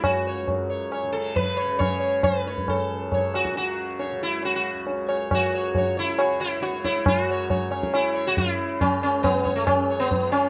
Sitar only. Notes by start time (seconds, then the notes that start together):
0.04 F#4
0.27 C#5
0.70 C#5
0.92 C#5
1.13 A4
1.36 B4
1.57 C#5
1.79 C#5
2.00 C#5
2.24 C5
2.39 B4
2.47 C#5
2.70 A4
3.14 C#5
3.35 F#4
3.57 F#4
3.99 C#5
4.23 E4
4.45 F#4
4.55 F#4
5.08 C#5
5.32 F#4 C#5
5.54 C#5
5.77 C#5
5.97 E4 C#5
6.18 F#4 C#5
6.40 E4 C#5
6.63 F#4 C#5
6.84 E4 C#5
7.08 F#4
7.30 C#5
7.50 C#5
7.71 C#5
7.94 E4
8.14 C#5
8.27 F#4
8.38 E4
8.81 C#4
9.03 C#4
9.23 B3
9.44 C#5
9.56 A3
9.67 C#4
9.90 C#5
10.00 B3
10.32 C#4